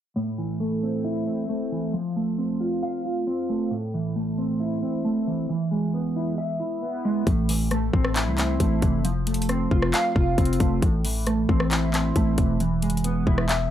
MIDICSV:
0, 0, Header, 1, 4, 480
1, 0, Start_track
1, 0, Key_signature, 0, "minor"
1, 0, Tempo, 444444
1, 170, Time_signature, 4, 2, 24, 8
1, 14801, End_track
2, 0, Start_track
2, 0, Title_t, "Clean electric guitar"
2, 0, Program_c, 0, 27
2, 171, Note_on_c, 0, 45, 98
2, 411, Note_on_c, 0, 52, 71
2, 649, Note_on_c, 0, 57, 90
2, 896, Note_on_c, 0, 60, 81
2, 1128, Note_on_c, 0, 64, 94
2, 1362, Note_off_c, 0, 60, 0
2, 1370, Note_off_c, 0, 45, 0
2, 1375, Note_on_c, 0, 60, 79
2, 1596, Note_off_c, 0, 57, 0
2, 1609, Note_on_c, 0, 57, 81
2, 1611, Note_off_c, 0, 52, 0
2, 1853, Note_on_c, 0, 52, 73
2, 2089, Note_off_c, 0, 64, 0
2, 2089, Note_on_c, 0, 53, 91
2, 2090, Note_off_c, 0, 57, 0
2, 2092, Note_off_c, 0, 52, 0
2, 2093, Note_off_c, 0, 60, 0
2, 2334, Note_on_c, 0, 57, 76
2, 2573, Note_on_c, 0, 60, 86
2, 2811, Note_on_c, 0, 65, 88
2, 3053, Note_on_c, 0, 77, 97
2, 3280, Note_off_c, 0, 65, 0
2, 3289, Note_off_c, 0, 53, 0
2, 3293, Note_on_c, 0, 65, 83
2, 3518, Note_off_c, 0, 60, 0
2, 3531, Note_on_c, 0, 60, 84
2, 3532, Note_off_c, 0, 57, 0
2, 3772, Note_on_c, 0, 57, 76
2, 4004, Note_on_c, 0, 45, 99
2, 4011, Note_off_c, 0, 57, 0
2, 4011, Note_off_c, 0, 60, 0
2, 4011, Note_off_c, 0, 65, 0
2, 4011, Note_off_c, 0, 77, 0
2, 4255, Note_on_c, 0, 52, 80
2, 4491, Note_on_c, 0, 57, 89
2, 4728, Note_on_c, 0, 60, 88
2, 4968, Note_on_c, 0, 64, 87
2, 5195, Note_off_c, 0, 60, 0
2, 5207, Note_off_c, 0, 45, 0
2, 5208, Note_on_c, 0, 60, 84
2, 5435, Note_off_c, 0, 57, 0
2, 5448, Note_on_c, 0, 57, 85
2, 5452, Note_off_c, 0, 52, 0
2, 5692, Note_on_c, 0, 52, 75
2, 5919, Note_off_c, 0, 52, 0
2, 5929, Note_off_c, 0, 57, 0
2, 5929, Note_off_c, 0, 60, 0
2, 5929, Note_off_c, 0, 64, 0
2, 5932, Note_on_c, 0, 52, 95
2, 6168, Note_on_c, 0, 56, 75
2, 6412, Note_on_c, 0, 59, 88
2, 6654, Note_on_c, 0, 64, 87
2, 6886, Note_off_c, 0, 64, 0
2, 6890, Note_on_c, 0, 76, 102
2, 7125, Note_on_c, 0, 64, 78
2, 7131, Note_off_c, 0, 52, 0
2, 7356, Note_off_c, 0, 59, 0
2, 7369, Note_off_c, 0, 56, 0
2, 7369, Note_on_c, 0, 59, 76
2, 7613, Note_on_c, 0, 56, 80
2, 7845, Note_off_c, 0, 56, 0
2, 7848, Note_off_c, 0, 64, 0
2, 7849, Note_off_c, 0, 59, 0
2, 7849, Note_on_c, 0, 45, 102
2, 7850, Note_off_c, 0, 76, 0
2, 8091, Note_on_c, 0, 52, 77
2, 8328, Note_on_c, 0, 57, 98
2, 8574, Note_on_c, 0, 60, 88
2, 8807, Note_on_c, 0, 64, 101
2, 9040, Note_off_c, 0, 60, 0
2, 9049, Note_off_c, 0, 45, 0
2, 9053, Note_on_c, 0, 60, 85
2, 9274, Note_off_c, 0, 57, 0
2, 9287, Note_on_c, 0, 57, 89
2, 9290, Note_off_c, 0, 52, 0
2, 9533, Note_on_c, 0, 52, 79
2, 9762, Note_off_c, 0, 52, 0
2, 9767, Note_on_c, 0, 53, 98
2, 9768, Note_off_c, 0, 57, 0
2, 9768, Note_off_c, 0, 64, 0
2, 9771, Note_off_c, 0, 60, 0
2, 10010, Note_on_c, 0, 57, 84
2, 10249, Note_on_c, 0, 60, 93
2, 10488, Note_on_c, 0, 65, 98
2, 10732, Note_on_c, 0, 77, 101
2, 10960, Note_off_c, 0, 65, 0
2, 10968, Note_off_c, 0, 53, 0
2, 10973, Note_on_c, 0, 65, 89
2, 11198, Note_off_c, 0, 60, 0
2, 11210, Note_off_c, 0, 57, 0
2, 11211, Note_on_c, 0, 60, 86
2, 11452, Note_on_c, 0, 57, 82
2, 11684, Note_on_c, 0, 45, 103
2, 11690, Note_off_c, 0, 60, 0
2, 11691, Note_off_c, 0, 57, 0
2, 11691, Note_off_c, 0, 65, 0
2, 11691, Note_off_c, 0, 77, 0
2, 11933, Note_on_c, 0, 52, 88
2, 12170, Note_on_c, 0, 57, 92
2, 12407, Note_on_c, 0, 60, 91
2, 12646, Note_on_c, 0, 64, 94
2, 12874, Note_off_c, 0, 60, 0
2, 12887, Note_off_c, 0, 45, 0
2, 12887, Note_on_c, 0, 60, 88
2, 13115, Note_off_c, 0, 57, 0
2, 13128, Note_on_c, 0, 57, 93
2, 13131, Note_off_c, 0, 52, 0
2, 13372, Note_on_c, 0, 52, 83
2, 13599, Note_off_c, 0, 52, 0
2, 13608, Note_off_c, 0, 64, 0
2, 13609, Note_off_c, 0, 57, 0
2, 13609, Note_off_c, 0, 60, 0
2, 13611, Note_on_c, 0, 52, 104
2, 13847, Note_on_c, 0, 56, 82
2, 14090, Note_on_c, 0, 59, 93
2, 14334, Note_on_c, 0, 64, 90
2, 14565, Note_off_c, 0, 64, 0
2, 14570, Note_on_c, 0, 76, 111
2, 14801, Note_off_c, 0, 52, 0
2, 14801, Note_off_c, 0, 56, 0
2, 14801, Note_off_c, 0, 59, 0
2, 14801, Note_off_c, 0, 76, 0
2, 14801, End_track
3, 0, Start_track
3, 0, Title_t, "808-style bass"
3, 0, Program_c, 1, 38
3, 7849, Note_on_c, 1, 33, 117
3, 8541, Note_off_c, 1, 33, 0
3, 8570, Note_on_c, 1, 33, 104
3, 8930, Note_on_c, 1, 36, 106
3, 8946, Note_off_c, 1, 33, 0
3, 9272, Note_off_c, 1, 36, 0
3, 9289, Note_on_c, 1, 33, 113
3, 9520, Note_off_c, 1, 33, 0
3, 9530, Note_on_c, 1, 29, 102
3, 10452, Note_off_c, 1, 29, 0
3, 10490, Note_on_c, 1, 29, 101
3, 10721, Note_off_c, 1, 29, 0
3, 10970, Note_on_c, 1, 29, 105
3, 11200, Note_off_c, 1, 29, 0
3, 11210, Note_on_c, 1, 29, 116
3, 11441, Note_off_c, 1, 29, 0
3, 11451, Note_on_c, 1, 29, 104
3, 11681, Note_off_c, 1, 29, 0
3, 11691, Note_on_c, 1, 33, 110
3, 12382, Note_off_c, 1, 33, 0
3, 12410, Note_on_c, 1, 33, 100
3, 13101, Note_off_c, 1, 33, 0
3, 13131, Note_on_c, 1, 33, 110
3, 13361, Note_off_c, 1, 33, 0
3, 13371, Note_on_c, 1, 28, 103
3, 13850, Note_on_c, 1, 29, 103
3, 13866, Note_off_c, 1, 28, 0
3, 14091, Note_on_c, 1, 28, 105
3, 14107, Note_off_c, 1, 29, 0
3, 14318, Note_off_c, 1, 28, 0
3, 14330, Note_on_c, 1, 28, 98
3, 14791, Note_off_c, 1, 28, 0
3, 14801, End_track
4, 0, Start_track
4, 0, Title_t, "Drums"
4, 7849, Note_on_c, 9, 36, 118
4, 7849, Note_on_c, 9, 42, 77
4, 7957, Note_off_c, 9, 36, 0
4, 7957, Note_off_c, 9, 42, 0
4, 8089, Note_on_c, 9, 46, 88
4, 8197, Note_off_c, 9, 46, 0
4, 8327, Note_on_c, 9, 42, 75
4, 8331, Note_on_c, 9, 37, 67
4, 8435, Note_off_c, 9, 42, 0
4, 8439, Note_off_c, 9, 37, 0
4, 8570, Note_on_c, 9, 36, 92
4, 8678, Note_off_c, 9, 36, 0
4, 8689, Note_on_c, 9, 37, 98
4, 8797, Note_off_c, 9, 37, 0
4, 8810, Note_on_c, 9, 39, 109
4, 8810, Note_on_c, 9, 42, 95
4, 8918, Note_off_c, 9, 39, 0
4, 8918, Note_off_c, 9, 42, 0
4, 9051, Note_on_c, 9, 39, 96
4, 9054, Note_on_c, 9, 42, 87
4, 9159, Note_off_c, 9, 39, 0
4, 9162, Note_off_c, 9, 42, 0
4, 9289, Note_on_c, 9, 42, 86
4, 9290, Note_on_c, 9, 36, 95
4, 9397, Note_off_c, 9, 42, 0
4, 9398, Note_off_c, 9, 36, 0
4, 9529, Note_on_c, 9, 42, 77
4, 9530, Note_on_c, 9, 36, 97
4, 9637, Note_off_c, 9, 42, 0
4, 9638, Note_off_c, 9, 36, 0
4, 9770, Note_on_c, 9, 42, 77
4, 9878, Note_off_c, 9, 42, 0
4, 10010, Note_on_c, 9, 46, 87
4, 10011, Note_on_c, 9, 42, 50
4, 10090, Note_off_c, 9, 42, 0
4, 10090, Note_on_c, 9, 42, 66
4, 10118, Note_off_c, 9, 46, 0
4, 10171, Note_off_c, 9, 42, 0
4, 10171, Note_on_c, 9, 42, 84
4, 10249, Note_off_c, 9, 42, 0
4, 10249, Note_on_c, 9, 42, 77
4, 10253, Note_on_c, 9, 37, 67
4, 10357, Note_off_c, 9, 42, 0
4, 10361, Note_off_c, 9, 37, 0
4, 10490, Note_on_c, 9, 36, 91
4, 10598, Note_off_c, 9, 36, 0
4, 10610, Note_on_c, 9, 37, 99
4, 10718, Note_off_c, 9, 37, 0
4, 10731, Note_on_c, 9, 39, 116
4, 10731, Note_on_c, 9, 42, 95
4, 10839, Note_off_c, 9, 39, 0
4, 10839, Note_off_c, 9, 42, 0
4, 10970, Note_on_c, 9, 36, 102
4, 11078, Note_off_c, 9, 36, 0
4, 11210, Note_on_c, 9, 42, 69
4, 11211, Note_on_c, 9, 36, 102
4, 11291, Note_off_c, 9, 42, 0
4, 11291, Note_on_c, 9, 42, 69
4, 11319, Note_off_c, 9, 36, 0
4, 11371, Note_off_c, 9, 42, 0
4, 11371, Note_on_c, 9, 42, 66
4, 11450, Note_off_c, 9, 42, 0
4, 11450, Note_on_c, 9, 42, 83
4, 11451, Note_on_c, 9, 36, 102
4, 11558, Note_off_c, 9, 42, 0
4, 11559, Note_off_c, 9, 36, 0
4, 11690, Note_on_c, 9, 36, 121
4, 11690, Note_on_c, 9, 42, 76
4, 11798, Note_off_c, 9, 36, 0
4, 11798, Note_off_c, 9, 42, 0
4, 11930, Note_on_c, 9, 46, 88
4, 12038, Note_off_c, 9, 46, 0
4, 12167, Note_on_c, 9, 42, 77
4, 12171, Note_on_c, 9, 37, 68
4, 12275, Note_off_c, 9, 42, 0
4, 12279, Note_off_c, 9, 37, 0
4, 12410, Note_on_c, 9, 36, 90
4, 12518, Note_off_c, 9, 36, 0
4, 12529, Note_on_c, 9, 37, 100
4, 12637, Note_off_c, 9, 37, 0
4, 12650, Note_on_c, 9, 39, 111
4, 12650, Note_on_c, 9, 42, 94
4, 12758, Note_off_c, 9, 39, 0
4, 12758, Note_off_c, 9, 42, 0
4, 12890, Note_on_c, 9, 39, 94
4, 12894, Note_on_c, 9, 42, 86
4, 12998, Note_off_c, 9, 39, 0
4, 13002, Note_off_c, 9, 42, 0
4, 13129, Note_on_c, 9, 42, 87
4, 13130, Note_on_c, 9, 36, 102
4, 13237, Note_off_c, 9, 42, 0
4, 13238, Note_off_c, 9, 36, 0
4, 13369, Note_on_c, 9, 42, 75
4, 13371, Note_on_c, 9, 36, 98
4, 13477, Note_off_c, 9, 42, 0
4, 13479, Note_off_c, 9, 36, 0
4, 13611, Note_on_c, 9, 42, 76
4, 13719, Note_off_c, 9, 42, 0
4, 13850, Note_on_c, 9, 46, 87
4, 13851, Note_on_c, 9, 42, 50
4, 13930, Note_off_c, 9, 42, 0
4, 13930, Note_on_c, 9, 42, 68
4, 13958, Note_off_c, 9, 46, 0
4, 14010, Note_off_c, 9, 42, 0
4, 14010, Note_on_c, 9, 42, 81
4, 14087, Note_off_c, 9, 42, 0
4, 14087, Note_on_c, 9, 42, 78
4, 14195, Note_off_c, 9, 42, 0
4, 14330, Note_on_c, 9, 36, 97
4, 14438, Note_off_c, 9, 36, 0
4, 14449, Note_on_c, 9, 37, 98
4, 14557, Note_off_c, 9, 37, 0
4, 14570, Note_on_c, 9, 39, 113
4, 14570, Note_on_c, 9, 42, 93
4, 14678, Note_off_c, 9, 39, 0
4, 14678, Note_off_c, 9, 42, 0
4, 14801, End_track
0, 0, End_of_file